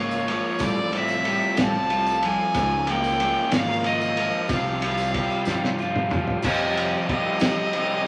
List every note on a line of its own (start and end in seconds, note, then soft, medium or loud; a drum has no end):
0.00 0.38 G#1 medium
0.00 0.28 C#3 medium
0.00 0.24 F3 medium
0.00 0.25 G#3 medium
0.00 0.60 A#3 medium
0.00 0.26 F4 medium
0.00 6.40 F4 medium
0.00 0.60 G#4 medium
0.00 0.27 A#4 medium
0.00 0.58 A#4 medium
0.00 0.65 C#5 medium
0.00 0.59 C#6 medium
0.11 tambourine medium
0.25 0.58 F3 medium
0.25 0.59 G#3 medium
0.25 0.59 F4 medium
0.25 0.60 A#4 medium
0.25 ride medium
0.58 1.36 A1 loud
0.58 0.75 A2 medium
0.58 0.76 F3 medium
0.58 0.76 G3 medium
0.58 2.53 G3 medium
0.58 0.76 C4 medium
0.58 0.75 F4 medium
0.58 2.53 A4 medium
0.58 0.74 A4 loud
0.58 kick medium
0.58 ride medium
0.58 tambourine medium
0.64 0.98 D5 loud
0.75 0.90 G3 soft
0.75 0.91 C4 soft
0.75 0.92 F4 soft
0.75 0.92 A4 medium
0.91 1.23 G3 medium
0.91 1.25 C4 medium
0.91 1.25 F4 medium
0.91 1.26 A4 medium
0.91 ride medium
0.91 tambourine soft
0.97 1.62 E5 loud
1.08 tambourine medium
1.24 1.57 G3 medium
1.24 1.58 C4 soft
1.24 1.58 F4 medium
1.24 2.55 G4 medium
1.24 1.59 A4 medium
1.24 ride medium
1.57 2.34 C2 loud
1.57 1.74 A2 medium
1.57 1.74 F3 medium
1.57 1.75 G3 medium
1.57 1.74 C4 medium
1.57 1.74 F4 medium
1.57 1.72 A4 medium
1.57 2.27 A5 loud
1.57 snare loud
1.57 ride medium
1.57 tambourine medium
1.73 1.89 G3 soft
1.73 1.90 C4 soft
1.73 1.91 F4 medium
1.73 1.90 A4 medium
1.90 2.22 G3 medium
1.90 2.23 C4 medium
1.90 2.23 F4 medium
1.90 2.24 A4 medium
1.90 ride medium
1.90 tambourine soft
2.06 tambourine medium
2.23 4.17 F3 medium
2.23 2.55 G3 medium
2.23 2.55 C4 medium
2.23 2.55 F4 medium
2.23 2.56 A4 medium
2.23 2.92 G#5 loud
2.23 ride medium
2.54 3.31 C#2 loud
2.54 2.71 C#3 medium
2.54 2.71 F3 medium
2.54 2.72 G#3 medium
2.54 2.70 F4 medium
2.54 4.47 A#4 medium
2.54 2.69 A#4 medium
2.54 4.48 C#6 medium
2.54 kick medium
2.54 ride medium
2.54 tambourine medium
2.70 2.86 G#3 soft
2.70 2.88 F4 soft
2.70 2.87 A#4 medium
2.86 3.17 F3 medium
2.86 3.18 G#3 medium
2.86 3.52 A#3 medium
2.86 3.20 F4 medium
2.86 3.20 A#4 medium
2.86 3.54 G5 loud
2.86 ride medium
2.86 tambourine soft
3.04 tambourine medium
3.18 3.50 F3 medium
3.18 3.51 G#3 medium
3.18 3.51 F4 medium
3.18 4.50 G#4 medium
3.18 3.51 A#4 medium
3.18 ride medium
3.51 4.29 G#1 medium
3.51 3.68 C#3 medium
3.51 3.68 F3 medium
3.51 3.69 G#3 medium
3.51 4.50 A#3 medium
3.51 3.69 F4 medium
3.51 3.67 A#4 medium
3.51 snare loud
3.51 ride loud
3.51 tambourine loud
3.55 3.88 F5 loud
3.68 3.83 G#3 soft
3.68 3.84 F4 medium
3.68 3.84 A#4 medium
3.83 4.14 F3 medium
3.83 4.15 G#3 medium
3.83 4.16 F4 medium
3.83 4.17 A#4 medium
3.83 4.50 D#5 loud
3.83 ride medium
3.83 tambourine soft
4.01 tambourine medium
4.15 4.47 F3 medium
4.15 4.49 G#3 medium
4.15 4.48 F4 medium
4.15 4.49 A#4 medium
4.15 ride medium
4.48 5.25 C2 loud
4.48 4.65 C3 medium
4.48 4.65 F3 medium
4.48 4.66 C4 medium
4.48 4.64 F4 medium
4.48 6.41 G4 medium
4.48 4.63 G4 medium
4.48 6.41 C6 medium
4.48 kick loud
4.48 ride medium
4.48 tambourine medium
4.53 5.77 F5 medium
4.64 4.80 C4 soft
4.64 4.82 F4 medium
4.64 4.81 G4 medium
4.81 5.13 F3 medium
4.81 5.47 G3 medium
4.81 5.14 C4 medium
4.81 5.15 F4 medium
4.81 5.15 G4 medium
4.81 ride medium
4.98 tambourine medium
5.14 5.46 F3 medium
5.14 5.47 C4 medium
5.14 5.47 F4 medium
5.14 5.48 G4 medium
5.14 kick medium
5.14 ride medium
5.30 tambourine soft
5.45 6.22 G2 medium
5.45 5.63 C3 medium
5.45 5.63 F3 loud
5.45 6.43 G3 medium
5.45 5.63 C4 loud
5.45 5.63 F4 loud
5.45 5.62 G4 loud
5.45 snare medium
5.45 tambourine medium
5.63 5.79 C4 medium
5.63 5.80 F4 medium
5.63 5.79 G4 medium
5.63 snare medium
5.78 6.10 F3 medium
5.78 6.11 C4 medium
5.78 6.12 F4 medium
5.78 tambourine soft
5.82 6.13 G4 medium
5.96 mid tom medium
6.10 6.43 F3 medium
6.10 6.43 C4 medium
6.10 6.44 F4 medium
6.10 mid tom loud
6.10 tambourine soft
6.15 6.44 G4 medium
6.28 floor tom medium
6.42 7.08 F2 medium
6.42 6.94 F2 loud
6.42 7.09 C3 medium
6.42 7.08 F3 medium
6.42 6.78 G3 medium
6.42 7.10 C4 medium
6.42 7.10 F4 medium
6.42 8.07 G4 medium
6.42 7.09 G4 medium
6.42 7.04 D#5 loud
6.42 8.07 F5 medium
6.42 8.07 C6 medium
6.42 kick loud
6.42 crash loud
6.42 tambourine medium
6.76 7.09 G3 medium
6.76 7.10 C4 medium
6.76 7.10 G4 medium
6.76 ride medium
7.08 7.34 F2 medium
7.08 7.40 F3 medium
7.08 7.42 G3 medium
7.08 7.41 C4 medium
7.08 7.40 F4 medium
7.08 7.40 G4 medium
7.08 8.07 D#5 loud
7.08 kick medium
7.08 ride medium
7.40 8.06 F2 medium
7.40 8.06 C3 medium
7.40 8.07 F3 loud
7.40 8.07 F3 medium
7.40 7.73 G3 medium
7.40 8.06 C4 medium
7.40 8.05 F4 medium
7.40 8.03 G4 medium
7.40 snare loud
7.40 ride loud
7.40 tambourine loud
7.73 8.07 F3 medium
7.73 8.06 G3 medium
7.73 8.06 C4 medium
7.73 8.04 G4 medium
7.73 ride medium
8.04 8.07 G4 medium